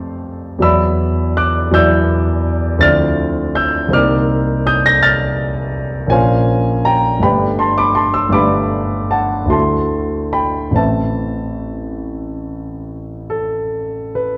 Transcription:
0.00 0.57 F2 medium
0.00 0.58 G3 soft
0.00 0.58 A3 soft
0.00 0.59 C4 soft
0.00 0.59 C5 soft
0.00 0.66 F5 medium
0.00 0.60 G5 soft
0.00 0.66 A5 medium
0.00 0.63 C6 soft
0.00 0.65 C7 soft
0.59 1.69 E2 soft
0.59 1.69 F#3 soft
0.59 1.70 B3 soft
0.59 1.70 E4 soft
0.59 1.70 D5 soft
0.59 1.37 E6 medium
0.63 1.34 B5 medium
1.37 1.72 D6 medium
1.37 1.74 F#6 medium
1.71 2.78 E2 medium
1.71 2.78 F#3 soft
1.71 2.79 B3 soft
1.71 2.79 E4 soft
1.71 2.80 D5 soft
1.71 2.79 E6 medium
1.71 2.83 G6 medium
2.78 3.87 D2 soft
2.78 3.88 F3 soft
2.78 3.88 C4 soft
2.78 3.89 E4 soft
2.78 3.89 D5 soft
2.78 3.55 A6 loud
2.82 3.52 F6 medium
3.55 3.91 E6 medium
3.55 3.93 G6 loud
3.89 6.08 C2 medium
3.89 6.06 A#3 soft
3.89 6.09 C4 soft
3.89 6.10 D#4 soft
3.93 6.10 D5 soft
3.93 4.64 D6 medium
3.93 4.68 F6 medium
4.67 4.84 D#6 medium
4.67 4.85 G6 medium
4.86 5.03 G6 medium
4.86 5.04 A#6 loud
5.03 6.09 F6 medium
5.03 6.13 A6 loud
6.07 7.17 A#1 soft
6.07 7.17 A#3 soft
6.07 7.18 C#4 soft
6.07 7.18 F4 soft
6.07 6.85 G#5 medium
6.11 7.19 C5 soft
6.11 6.82 F5 medium
6.85 7.21 G5 medium
6.85 7.23 A#5 medium
7.19 8.28 G1 soft
7.19 8.30 A3 soft
7.19 8.30 D4 soft
7.19 8.31 G4 soft
7.19 7.58 G5 medium
7.19 7.60 B5 medium
7.24 8.32 B4 soft
7.59 7.77 A5 medium
7.59 7.78 C6 medium
7.78 7.96 B5 medium
7.78 7.97 D6 medium
7.95 8.14 A5 medium
7.95 8.13 C6 medium
8.14 8.33 C6 medium
8.14 8.34 E6 medium
8.29 9.47 G1 medium
8.29 9.45 A3 soft
8.29 9.48 D4 soft
8.29 9.48 G4 soft
8.29 9.12 D6 medium
8.33 9.49 B4 soft
8.33 9.09 B5 medium
9.11 9.50 F#5 soft
9.11 9.49 A5 medium
9.45 10.70 D2 soft
9.45 10.70 A3 soft
9.45 10.71 E4 soft
9.49 10.72 F#4 soft
9.49 10.72 A4 soft
9.49 10.30 A5 medium
9.49 10.34 C6 medium
10.33 10.74 G5 soft
10.33 10.76 B5 medium
10.71 14.38 A1 soft
10.71 14.38 A3 soft
10.71 14.38 C4 soft
10.71 14.38 E4 soft
10.76 14.14 B4 soft
10.76 14.11 E5 soft
10.76 14.15 A5 medium
13.30 14.15 A4 medium
14.15 14.38 B4 medium

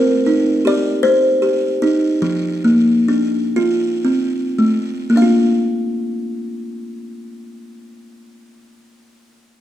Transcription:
0.00 1.42 C4 medium
0.00 0.68 A#4 medium
0.26 1.81 D#4 medium
0.65 1.41 G4 medium
0.65 1.05 D5 medium
1.03 2.22 C5 medium
1.42 2.22 G4 medium
1.82 2.23 D#4 medium
2.22 3.56 F3 medium
2.64 3.56 A#3 medium
3.08 3.56 D4 medium
3.56 5.17 F4 medium
4.05 5.16 C4 medium
4.58 5.16 A3 medium
5.10 8.13 A#3 medium
5.16 8.19 D4 medium
5.16 8.21 F5 medium
5.22 8.25 F4 medium

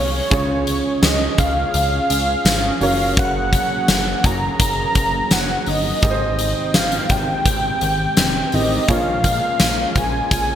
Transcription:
0.00 0.21 C2 loud
0.00 2.78 G#3 medium
0.00 0.29 A#3 medium
0.00 5.99 C#4 medium
0.00 0.27 F4 medium
0.00 5.99 G#4 medium
0.00 1.06 C#5 loud
0.30 0.83 C#2 loud
0.30 1.35 C#3 medium
0.30 2.77 F4 medium
0.30 2.77 G#4 medium
0.30 2.78 C#5 medium
0.30 kick loud
0.30 closed hi-hat medium
0.67 closed hi-hat medium
1.02 1.28 C#2 loud
1.02 1.39 D#5 medium
1.02 snare loud
1.02 closed hi-hat medium
1.02 tambourine medium
1.38 1.64 C#2 loud
1.38 2.78 F5 loud
1.38 kick medium
1.38 closed hi-hat medium
1.74 2.00 C#2 loud
1.74 closed hi-hat medium
2.10 2.36 C#2 medium
2.10 closed hi-hat medium
2.45 2.71 G#1 loud
2.45 snare loud
2.45 closed hi-hat medium
2.45 tambourine medium
2.81 3.58 F#1 loud
2.81 5.99 F#3 medium
2.81 6.00 A#3 medium
2.81 5.63 C#4 medium
2.81 5.63 F#4 medium
2.81 5.63 A#4 medium
2.81 5.64 C#5 medium
2.81 3.15 F5 loud
2.81 open hi-hat medium
3.17 4.27 F#5 loud
3.17 kick loud
3.17 closed hi-hat medium
3.53 kick medium
3.53 closed hi-hat medium
3.88 4.14 F#1 loud
3.88 snare loud
3.88 closed hi-hat medium
3.88 tambourine medium
4.24 4.50 F#1 loud
4.24 4.61 A#5 loud
4.24 kick loud
4.24 closed hi-hat medium
4.59 4.85 F#1 loud
4.59 5.34 A#5 loud
4.59 kick loud
4.59 closed hi-hat medium
4.95 5.21 F#1 loud
4.95 kick medium
4.95 closed hi-hat medium
5.31 5.57 F#1 loud
5.31 5.69 F#5 loud
5.31 snare loud
5.31 closed hi-hat medium
5.31 tambourine medium
5.66 5.93 G1 medium
5.66 6.76 D#5 loud
5.66 open hi-hat medium
6.02 6.54 G#1 loud
6.02 7.06 G#2 medium
6.02 8.85 D#3 medium
6.02 10.55 G#3 medium
6.02 8.86 C4 medium
6.02 8.84 D#4 medium
6.02 8.84 G4 medium
6.02 8.85 G#4 medium
6.02 6.10 A#4 medium
6.02 8.86 G5 medium
6.02 kick loud
6.02 closed hi-hat medium
6.11 8.88 C5 medium
6.39 closed hi-hat medium
6.74 7.00 G#1 medium
6.74 7.12 F5 loud
6.74 snare loud
6.74 closed hi-hat medium
6.74 tambourine medium
6.92 closed hi-hat medium
7.09 7.35 G#1 loud
7.09 8.55 G5 loud
7.09 kick medium
7.09 closed hi-hat medium
7.45 7.71 G#1 loud
7.45 kick loud
7.45 closed hi-hat medium
7.81 8.07 G#1 loud
7.81 closed hi-hat medium
8.17 8.43 F1 loud
8.17 8.31 D#3 medium
8.17 8.31 C4 medium
8.17 8.31 G4 medium
8.17 snare loud
8.17 closed hi-hat medium
8.17 tambourine medium
8.52 8.79 A1 loud
8.52 8.83 D#3 loud
8.52 8.83 C4 loud
8.52 8.83 G4 loud
8.52 8.90 D#5 loud
8.52 open hi-hat medium
8.88 9.40 A#1 loud
8.88 9.92 A#2 medium
8.88 10.55 A#3 medium
8.88 10.55 C#4 medium
8.88 10.55 F4 medium
8.88 10.55 G#4 medium
8.88 10.55 A#4 medium
8.88 10.55 C#5 medium
8.88 9.98 F5 loud
8.88 kick loud
8.88 closed hi-hat medium
9.24 kick medium
9.24 closed hi-hat medium
9.60 9.86 A#1 loud
9.60 snare loud
9.60 closed hi-hat medium
9.60 tambourine medium
9.95 10.21 A#1 loud
9.95 10.31 G#5 loud
9.95 kick medium
9.95 closed hi-hat medium
10.31 10.55 A#1 loud
10.31 10.55 G#5 loud
10.31 kick loud
10.31 closed hi-hat medium

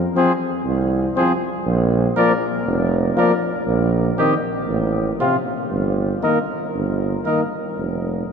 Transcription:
0.15 0.31 F3 medium
0.15 0.32 C4 medium
0.15 0.33 G#4 medium
0.15 0.32 C5 medium
0.66 1.08 C2 medium
1.16 1.33 F3 medium
1.16 1.32 C4 medium
1.16 1.33 G#4 medium
1.16 1.32 C5 medium
1.66 2.08 A#1 medium
2.16 2.33 F3 medium
2.16 2.33 A#3 medium
2.16 2.32 A#4 medium
2.16 2.33 D5 medium
2.67 3.09 F1 medium
3.16 3.32 F3 medium
3.16 3.33 A#3 medium
3.16 3.33 A#4 medium
3.16 3.34 D5 medium
3.67 4.10 A#1 medium
4.18 4.35 D#3 medium
4.18 4.34 C4 medium
4.18 4.34 G4 medium
4.18 4.35 D#5 medium
4.68 5.10 A1 medium
5.19 5.36 C3 medium
5.19 5.35 C4 medium
5.19 5.36 F4 medium
5.19 5.37 F5 medium
5.71 6.14 G1 medium
6.22 6.38 D#3 medium
6.22 6.39 A#3 medium
6.22 6.39 A#4 medium
6.22 6.39 D#5 medium
6.74 7.17 G1 medium
7.25 7.42 D#3 medium
7.25 7.43 A#3 medium
7.25 7.41 A#4 soft
7.25 7.42 D#5 medium
7.79 8.24 F1 medium

